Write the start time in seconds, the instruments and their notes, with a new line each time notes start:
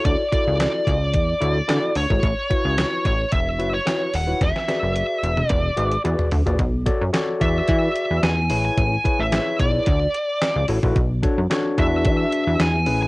Already playing: tine electric piano E4 F#4 A4 C#5
0.05 analog synth bass D2, lead electric guitar D5, kick, closed hi-hat
0.32 tine electric piano E4 F#4 A4 D5, lead electric guitar D5, kick, closed hi-hat
0.47 analog synth bass C#2
0.60 snare, clap, closed hi-hat
0.87 analog synth bass C#2, kick, closed hi-hat
1.14 analog synth bass E2, kick, closed hi-hat
1.41 analog synth bass D2, tine electric piano E4 F#4 A4 C#5, closed hi-hat
1.68 analog synth bass D3, tine electric piano E4 F#4 A4 D5, snare, clap, closed hi-hat
1.95 analog synth bass D2, lead electric guitar C#5, open hi-hat
2.10 analog synth bass G#1, tine electric piano E4 F#4 A4 C#5, kick
2.23 analog synth bass A1, kick, closed hi-hat
2.50 tine electric piano E4 F#4 B4 C#5, kick, closed hi-hat
2.65 analog synth bass C#2
2.78 snare, clap, closed hi-hat
3.05 analog synth bass A1, lead electric guitar C#5, kick, closed hi-hat
3.32 analog synth bass E1, lead electric guitar E5, kick, closed hi-hat
3.58 analog synth bass F#1, tine electric piano E4 F#4 B4 C#5, closed hi-hat
3.74 lead electric guitar C#5
3.85 tine electric piano E4 F#4 B4 C#5, snare, clap, closed hi-hat
4.14 analog synth bass D#1, lead electric guitar F#5, open hi-hat
4.27 tine electric piano E4 F#4 B4 C#5
4.41 analog synth bass E1, lead electric guitar E5, kick, snare, closed hi-hat
4.56 snare
4.68 tine electric piano F#4 G#4 B4 D5, snare, closed hi-hat
4.83 analog synth bass F#1
4.96 closed hi-hat
5.23 analog synth bass E1, closed hi-hat
5.37 mid tom
5.48 analog synth bass E1, lead electric guitar D5, kick, closed hi-hat, mid tom
5.77 analog synth bass G#1, tine electric piano F#4 G#4 B4 E5, closed hi-hat
5.92 closed hi-hat
6.04 analog synth bass E2, tine electric piano F#4 G#4 B4 D5, closed hi-hat
6.19 floor tom
6.31 analog synth bass D2, floor tom, open hi-hat
6.46 analog synth bass A#1, tine electric piano F#4 G#4 B4 D5, closed hi-hat, floor tom
6.59 analog synth bass B1, kick, closed hi-hat
6.86 tine electric piano F#4 A4 C#5 D5, kick, closed hi-hat
7.01 analog synth bass F#2
7.13 tine electric piano F#4 A4 C#5 D5, snare, clap, closed hi-hat
7.40 analog synth bass E2, tine electric piano F#4 G#4 B4 D5, lead electric guitar E5, kick, closed hi-hat
7.68 analog synth bass E3, kick, closed hi-hat
7.96 closed hi-hat
8.11 analog synth bass E2
8.23 analog synth bass E2, lead electric guitar G#5, snare, clap, closed hi-hat
8.50 analog synth bass A1, tine electric piano E4 G#4 B4 C#5, open hi-hat
8.65 lead electric guitar G#5
8.78 analog synth bass A1, kick, closed hi-hat
9.04 tine electric piano E4 G#4 B4 C#5, kick, closed hi-hat
9.20 analog synth bass A1, lead electric guitar E5
9.32 tine electric piano E4 G#4 B4 C5, snare, clap, closed hi-hat
9.39 tine electric piano C#5
9.60 analog synth bass B1, lead electric guitar D5, kick, closed hi-hat
9.86 analog synth bass D2, kick, closed hi-hat
10.14 closed hi-hat
10.42 snare, clap, closed hi-hat
10.56 analog synth bass C#2
10.68 analog synth bass A1, tine electric piano E4 F#4 A4 C#5, open hi-hat
10.83 analog synth bass A#1, tine electric piano E4 F#4 A4 B4, kick
10.96 analog synth bass B1, kick, closed hi-hat
11.23 tine electric piano D4 F#4 A4 C#5, kick, closed hi-hat
11.38 analog synth bass F#2
11.50 tine electric piano D4 F#4 A4 C#5, snare, clap, closed hi-hat
11.77 analog synth bass E2, tine electric piano D4 F#4 G#4 B4, lead electric guitar E5, kick, closed hi-hat
12.05 analog synth bass E3, kick, closed hi-hat
12.32 closed hi-hat
12.47 analog synth bass E2
12.60 analog synth bass E2, lead electric guitar G#5, snare, clap, closed hi-hat
12.86 analog synth bass A1, tine electric piano C#4 E4 G#4 B4, open hi-hat
13.03 lead electric guitar G#5